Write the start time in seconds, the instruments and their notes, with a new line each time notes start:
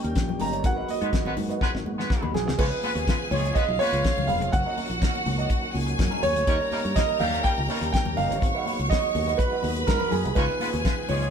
Already playing: tonewheel organ D#3 G3 A#3 C#4 G4, tine electric piano A#3 C#4 F4 G4, grand piano G5
0.03 fingered electric bass D#2, clean electric guitar G3 C#4 D#4 A#4, closed hi-hat
0.15 fingered electric bass A#1, tine electric piano A#3 C#4 F4 G4, muted clean electric guitar stroke, kick, snare, closed hi-hat, muted conga
0.28 muted clean electric guitar stroke, low conga
0.39 fingered electric bass G1, clean electric guitar G3 C#4 D#4 A#4, grand piano A#5, open hi-hat, low conga
0.52 clean electric guitar G3 C#4 D#4 C#5, closed hi-hat
0.63 fingered electric bass G#1, tonewheel organ F#3 G#3 B3 F#4, tine electric piano B3 D#4 F#4 A#4, grand piano F#5, muted clean electric guitar stroke, kick, closed hi-hat, muted conga
0.76 clean electric guitar B3 D#4 F#4 B4
0.87 clean electric guitar B3 D#4 F#4 B4, grand piano D#5, open hi-hat, high conga
1.01 fingered electric bass G#2, horn section G#3 B3 F#4 B4, closed hi-hat
1.12 clean electric guitar B3 D#4 F#4 B4, kick, snare, closed hi-hat, muted conga
1.25 fingered electric bass G#1, horn section G#3 B3 F#4 B4, muted clean electric guitar stroke, muted conga
1.37 fingered electric bass G#2, muted clean electric guitar stroke, open hi-hat, high conga, low conga
1.49 clean electric guitar B3 D#4 F#4 B4, closed hi-hat
1.61 horn section G#3 B3 F#4 B4, muted clean electric guitar stroke, kick, snare
1.74 fingered electric bass G#1, muted clean electric guitar stroke, snare
1.86 fingered electric bass G#2, high conga
1.98 horn section G#3 B3 F#4 B4, muted clean electric guitar stroke, snare
2.10 muted clean electric guitar stroke, kick, snare
2.22 fingered electric bass D#2, clean electric guitar B3 D#4 F#4 B4, muted conga, low conga
2.34 fingered electric bass B1, grand piano G#4, muted clean electric guitar stroke, snare, low conga
2.46 fingered electric bass C2, muted clean electric guitar stroke, snare
2.58 fingered electric bass C#2, tonewheel organ C#3 F3 G#3 B3 F4, clean electric guitar G#3 C#4 F4 B4, horn section G#3 C#4 F4 C#5, string section G#4 G#5, grand piano B4, kick, crash, muted conga
2.71 muted clean electric guitar stroke, muted conga
2.82 clean electric guitar G#3 C#4 F4 B4, horn section G#3 B3 F4 B4, open hi-hat, high conga
2.95 fingered electric bass D#2, clean electric guitar G#3 C#4 F4 C#5, closed hi-hat
3.07 horn section G#3 B3 F4 B4, muted clean electric guitar stroke, kick, snare, closed hi-hat, muted conga
3.20 muted clean electric guitar stroke
3.31 fingered electric bass C#2, horn section F3 G#3 C#4 G#4, grand piano C#5, open hi-hat, high conga, low conga
3.44 muted clean electric guitar stroke, closed hi-hat
3.55 horn section G#3 B3 F4 B4, string section F4 F5, grand piano D#5, muted clean electric guitar stroke, kick, closed hi-hat
3.68 fingered electric bass B1, muted clean electric guitar stroke
3.79 clean electric guitar G#3 C#4 F4 C#5, horn section G#3 B3 F4 B4, grand piano C#5, open hi-hat, high conga
3.93 fingered electric bass C#2, clean electric guitar G#3 C#4 F4 B4, closed hi-hat
4.04 kick, snare, closed hi-hat, muted conga
4.17 fingered electric bass C#2, muted clean electric guitar stroke, muted conga, low conga
4.27 fingered electric bass E1, clean electric guitar G#3 C#4 F4 B4, grand piano F5, open hi-hat, high conga, low conga
4.41 fingered electric bass F1, clean electric guitar G#3 C#4 F4 C#5, closed hi-hat
4.52 fingered electric bass F#1, tonewheel organ D#3 F#3 A#3 C#4 F#4, string section F#4 F#5, grand piano F#5, muted clean electric guitar stroke, kick, closed hi-hat
4.66 clean electric guitar F#3 C#4 D#4 A#4
4.77 clean electric guitar F#3 C#4 D#4 A#4, open hi-hat, high conga
4.89 fingered electric bass A#1, muted clean electric guitar stroke, closed hi-hat
5.01 clean electric guitar F#3 C#4 D#4 A#4, kick, snare, closed hi-hat, muted conga
5.14 muted clean electric guitar stroke, muted conga
5.25 fingered electric bass C#2, muted clean electric guitar stroke, open hi-hat, high conga, low conga
5.38 clean electric guitar F#3 C#4 D#4 A#4, closed hi-hat
5.49 muted clean electric guitar stroke, kick, closed hi-hat, muted conga
5.62 muted clean electric guitar stroke
5.74 fingered electric bass C#2, string section G#4 G#5, open hi-hat, high conga
5.87 muted clean electric guitar stroke, closed hi-hat
5.99 fingered electric bass F#2, muted clean electric guitar stroke, kick, snare, closed hi-hat
6.11 clean electric guitar F#3 C#4 D#4 A#4, muted conga, low conga
6.23 fingered electric bass D#2, grand piano C#5, open hi-hat, high conga, low conga
6.35 fingered electric bass D2, muted clean electric guitar stroke, closed hi-hat
6.47 fingered electric bass D#2, clean electric guitar G3 C#4 D#4 A#4, tonewheel organ G3 G4, horn section A#3 C#4 G4 C#5, string section A#4 A#5, kick, closed hi-hat
6.60 muted clean electric guitar stroke, muted conga
6.72 horn section G3 A#3 D#4 A#4, clean electric guitar G3 C#4 D#4 A#4, open hi-hat, high conga
6.84 fingered electric bass G2, clean electric guitar G3 C#4 D#4 C#5, closed hi-hat
6.96 horn section G3 A#3 D#4 A#4, grand piano D#5, kick, snare, closed hi-hat
7.08 muted clean electric guitar stroke
7.20 fingered electric bass D#2, horn section D#3 G3 C#4 G4, grand piano F5, open hi-hat, high conga, low conga
7.33 muted clean electric guitar stroke, closed hi-hat
7.44 horn section G3 A#3 D#4 A#4, grand piano G5, muted clean electric guitar stroke, kick, closed hi-hat
7.57 fingered electric bass C#2, muted clean electric guitar stroke
7.68 clean electric guitar G3 C#4 D#4 C#5, horn section G3 A#3 D#4 A#4, open hi-hat, high conga
7.81 fingered electric bass D#2, clean electric guitar G3 C#4 D#4 A#4, closed hi-hat
7.93 grand piano G5, muted clean electric guitar stroke, kick, snare, closed hi-hat
8.05 fingered electric bass D#2, muted clean electric guitar stroke, muted conga, low conga
8.16 fingered electric bass F#1, clean electric guitar G3 C#4 D#4 A#4, grand piano F5, open hi-hat, high conga, low conga
8.30 fingered electric bass G1, clean electric guitar G3 C#4 D#4 C#5, closed hi-hat
8.41 fingered electric bass G#1, tonewheel organ F#3 G#3 B3 F#4, string section C#5 C#6, muted clean electric guitar stroke, kick, closed hi-hat, muted conga
8.54 clean electric guitar B3 D#4 F#4 B4
8.66 clean electric guitar B3 D#4 F#4 B4, open hi-hat, high conga
8.79 fingered electric bass C#2, muted clean electric guitar stroke, closed hi-hat
8.90 clean electric guitar B3 D#4 F#4 B4, grand piano D#5, kick, snare, closed hi-hat
9.03 muted clean electric guitar stroke, muted conga
9.14 fingered electric bass D#2, muted clean electric guitar stroke, open hi-hat, high conga, low conga
9.27 clean electric guitar B3 D#4 F#4 B4, closed hi-hat
9.38 grand piano B4, string section B4 B5, kick, closed hi-hat, muted conga
9.51 clean electric guitar B3 D#4 F#4 B4
9.62 fingered electric bass D#2, clean electric guitar B3 D#4 F#4 B4, open hi-hat, high conga
9.76 muted clean electric guitar stroke, closed hi-hat
9.87 fingered electric bass G#2, grand piano A#4, muted clean electric guitar stroke, kick, snare, closed hi-hat, muted conga
10.00 clean electric guitar B3 D#4 F#4 B4, muted conga, low conga
10.11 fingered electric bass F#2, grand piano G#4, muted clean electric guitar stroke, open hi-hat, high conga, low conga
10.24 fingered electric bass C2, muted clean electric guitar stroke, closed hi-hat
10.35 fingered electric bass C#2, tonewheel organ C#3 F3 F4, tine electric piano G#3 B3 D#4 F4, clean electric guitar G#3 C#4 F4 B4, horn section G#3 C#4 F4 C#5, string section G#4 G#5, grand piano B4, kick, closed hi-hat, muted conga
10.48 muted clean electric guitar stroke, muted conga
10.60 clean electric guitar G#3 C#4 F4 B4, horn section G#3 B3 F4 B4, open hi-hat, high conga
10.72 fingered electric bass D#2, clean electric guitar G#3 C#4 F4 C#5, closed hi-hat
10.84 horn section G#3 B3 F4 B4, muted clean electric guitar stroke, kick, snare, closed hi-hat, muted conga
10.97 muted clean electric guitar stroke
11.09 fingered electric bass C#2, horn section F3 G#3 C#4 G#4, grand piano C#5, open hi-hat, high conga, low conga
11.21 muted clean electric guitar stroke, closed hi-hat